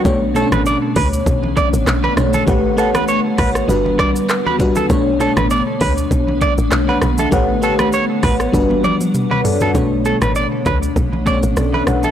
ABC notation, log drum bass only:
X:1
M:4/4
L:1/16
Q:"Swing 16ths" 1/4=99
K:Bm
V:1 name="Log drum bass" clef=bass
B,,,3 A,,,2 z D,,2 B,,,3 A,,, B,,,2 B,,,2 | A,,,3 B,,,2 z A,,,2 G,,,3 z4 z | B,,,3 A,,,2 z D,,2 B,,,3 A,,, B,,,2 B,,,2 | A,,,3 B,,,2 z A,,,2 G,,,3 z4 z |
B,,,3 A,,,2 z D,,2 B,,,3 A,,, B,,,2 B,,,2 |]